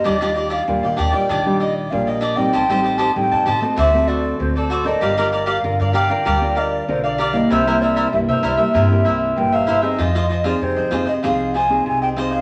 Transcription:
<<
  \new Staff \with { instrumentName = "Flute" } { \time 4/4 \key ees \major \tempo 4 = 97 ees''8. f''8. g''4 ees''16 d''16 f''16 ees''8 g''16~ | g''8. a''16 g''8 r8 fes''8 d''8 c''16 d''8 ees''16~ | ees''8. f''8. g''4 ees''16 d''16 c''16 d''8 ees''16 | c''8 d''8 e''16 c''16 d''16 e''8. r8 g''16 f''8 ees''16~ |
ees''8. d''16 c''8. ees''16 f''8 aes''8 aes''16 g''8 f''16 | }
  \new Staff \with { instrumentName = "Cavaquinho" } { \time 4/4 \key ees \major <d' g' d'' ees''>16 <d' g' d'' ees''>16 <d' g' d'' ees''>16 <d' g' d'' ees''>16 r16 <g' d'' ees''>16 <d' g' d'' ees''>16 <g' d'' ees''>16 <d' g' d'' ees''>8 <g' d'' ees''>8. <g' d'' ees''>16 <d' g' d'' ees''>16 <g' d'' ees''>16 | <g' c'' ees'' a''>16 <g' c'' ees'' a''>16 <g' c'' ees'' a''>16 <g' c'' ees'' a''>16 r16 <c'' ees'' a''>16 <g' c'' ees'' a''>16 <c'' ees'' a''>16 <fis' a' c'' d''>8 <fis' a' c'' d''>8. <a' c'' d''>16 <fis' a' c'' d''>16 <a' c'' d''>16 | <g' bes' d'' f''>16 <g' bes' d'' f''>16 <g' bes' d'' f''>16 <g' bes' d'' f''>16 r16 <bes' d'' f''>16 <g' bes' d'' f''>16 <bes' d'' f''>16 <g' bes' d'' f''>8 <g' bes' d'' f''>8. <bes' d'' f''>16 <g' bes' d'' f''>16 <bes' d'' f''>16 | <e' bes' c'' e''>16 <e' bes' c'' e''>16 <e' bes' c'' e''>16 <e' bes' c'' e''>16 r16 <bes' c'' e''>16 <e' bes' c'' e''>16 <bes' c'' e''>16 <e' bes' c'' e''>8 <e' bes' c'' e''>8. <bes' c'' e''>16 <e' bes' c'' e''>16 <bes' c'' e''>16 |
<f' aes' c'' ees''>16 <f' aes' c'' ees''>16 <f' aes' c'' ees''>16 <f' aes' c'' ees''>16 r16 <aes' c'' ees''>16 <f' aes' c'' ees''>16 <aes' c'' ees''>16 <f' aes' c'' ees''>8 <f' aes' c'' ees''>8. <aes' c'' ees''>16 <f' aes' c'' ees''>16 <aes' c'' ees''>16 | }
  \new Staff \with { instrumentName = "Nylon-string guitar" } { \time 4/4 \key ees \major << { <g d' f'>16 <g f'>8. <g d' f'>8. <g d' f'>8 <g d' f'>8. <g d' f'>8 r16 <g c' ees'>16~ | <g c' ees'>16 <g c' ees'>8. <g c' ees'>8. <a c' ges'>8 <a c' fis'>8. <a c' fis'>8 r16 <d' f' bes'>16~ | <d' f' bes'>16 <f' bes'>8. <d' f' bes'>8 r16 <d' f' bes'>8 <d' f' bes'>8. <d' f' bes'>8 r16 <g bes fes'>16~ | <g bes fes'>16 <g bes e'>8. <g bes e'>8 r16 <g bes e'>8 <g bes e'>8. <g bes e'>8. <c' ees' aes'>16~ |
<c' ees' aes'>16 r8 <c' ees' aes'>8. <c' ees' aes'>16 r16 <c' ees' aes'>8 r16 <c' ees' aes'>8. <c' ees' aes'>8 | } \\ { ees4 bes,4 ees4 bes,4 | a,4 a,4 d4 a,4 | g4 d4 g4 d4 | c4 g,4 c4 g,4 |
f4 c4 f4 c4 | } >> }
  \new Staff \with { instrumentName = "Upright bass" } { \clef bass \time 4/4 \key ees \major ees,4 ees,16 ees16 ees,16 r16 bes,,4 bes,,4 | a,,4 a,,16 a,16 a,,16 r16 d,4 d,4 | g,,4 g,,16 g,16 g,,16 r16 d,4 ces,4 | c,4 c,16 c16 c,16 r16 g,8 r8 bes,,8 g,,8 |
f,4 f,16 f16 f,16 r16 c,4 c,4 | }
>>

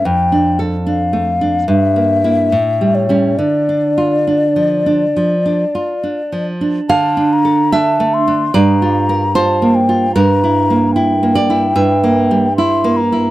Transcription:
<<
  \new Staff \with { instrumentName = "Flute" } { \time 4/4 \key d \minor \tempo 4 = 74 g''8 r8 f''4 e''4. cis''8 | d''2.~ d''8 r8 | a''8 bes''8 a''8 c'''8 bes''4 a''8 g''8 | bes''4 g''2 c'''8 bes''8 | }
  \new Staff \with { instrumentName = "Nylon-string guitar" } { \time 4/4 \key d \minor << { r1 | r1 | f''4 e''4 d''4 c''4 | bes'4. d''8 e''4. r8 | } \\ { \tuplet 3/2 { f,8 d'8 a'8 d'8 a8 d'8 g,8 bes8 <bes e'>8 a,8 g8 <g cis'>8 } | \tuplet 3/2 { d8 d'8 f'8 d'8 f8 d'8 f8 d'8 f'8 d'8 f8 d'8 } | \tuplet 3/2 { d8 d'8 a'8 d'8 a8 d'8 g,8 f'8 bes'8 f'8 bes8 f'8 } | \tuplet 3/2 { g,8 e'8 bes8 e'8 bes8 e'8 g,8 bes8 g8 e'8 bes8 e'8 } | } >> }
>>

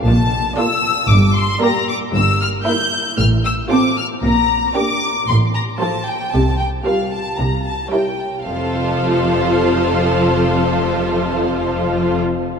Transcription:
<<
  \new Staff \with { instrumentName = "Violin section" } { \time 4/4 \key f \major \tempo 4 = 114 a''4 e'''4 d'''8 c'''8 bes''8 d'''8 | e'''8 f'''8 g'''4 f'''8 e'''8 d'''8 f'''8 | bes''4 d'''4 c'''8 bes''8 a''8 g''8 | a''8 g''8 f''8 a''8 bes''8 a''8 g''4 |
f''1~ | f''1 | }
  \new Staff \with { instrumentName = "Violin section" } { \time 4/4 \key f \major r4 <a' d''>4 r4 <bes' d''>4 | r4 <bes' e''>4 r4 <a' c''>4 | r4 <g' d''>4 r4 <a' c''>4 | r4 <bes' c''>4 r4 <bes' des''>4 |
<a' c''>1~ | <a' c''>1 | }
  \new Staff \with { instrumentName = "Viola section" } { \time 4/4 \key f \major r4 <bes f'>4 r4 <bes g'>4 | r4 <bes e'>4 r4 <c' f'>4 | r4 <bes d'>4 r4 <f f'>4 | r4 <g f'>4 r4 <g e'>4 |
<f f'>1~ | <f f'>1 | }
  \new Staff \with { instrumentName = "Cello section" } { \clef bass \time 4/4 \key f \major bes,4 r4 g,4 r4 | g,4 r4 a,4 r4 | bes,4 r4 a,4 r4 | c4 r4 c4 r4 |
f,1~ | f,1 | }
  \new Staff \with { instrumentName = "Double bass section" } { \clef bass \time 4/4 \key f \major bes,,4 r4 g,,4 r4 | g,,4 r4 a,,4 r4 | bes,,4 r4 a,,4 r4 | c,4 r4 c,4 r4 |
f,,1~ | f,,1 | }
>>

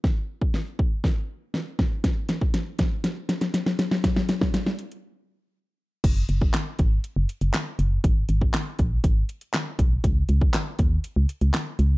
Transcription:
<<
  \new Staff \with { instrumentName = "FM bass" } { \clef bass \time 4/4 \key aes \dorian \tempo 4 = 120 r1 | r1 | r1 | ges,,8 ges,,8 r8 aes,,8 r16 ges,,16 r16 ges,,16 r8 ges,,8 |
aes,,8 aes,,8 r8 bes,,8 aes,,8 r4 ces,8 | des,8 des,8 r8 ees,8 r16 des,16 r16 des,16 r8 des,8 | }
  \new DrumStaff \with { instrumentName = "Drums" } \drummode { \time 4/4 <bd sn>8. bd16 sn8 bd8 <bd sn>4 sn8 <bd sn>8 | <hh bd sn>8 <hh sn>16 bd16 <hh sn>8 <hh bd sn>8 <hh sn>8 <hh sn>16 <hh sn>16 <hh sn>16 sn16 <hh sn>16 sn16 | <hh bd sn>16 sn16 <hh sn>16 <bd sn>16 <hh sn>16 sn16 hh16 hh16 r4 r4 | <cymc hh bd>8 hh16 bd16 <hc hh sn>8 <hh bd>8 hh8 hh16 hh16 <hc hh sn>8 hh8 |
<hh bd>8 hh16 bd16 <hc hh sn>8 <hh bd>8 <hh bd>8 hh16 hh16 <hc hh sn>8 <hh bd>8 | <hh bd>8 hh16 bd16 <hc hh sn>8 <hh bd>8 hh8 hh16 hh16 <hc hh sn>8 hh8 | }
>>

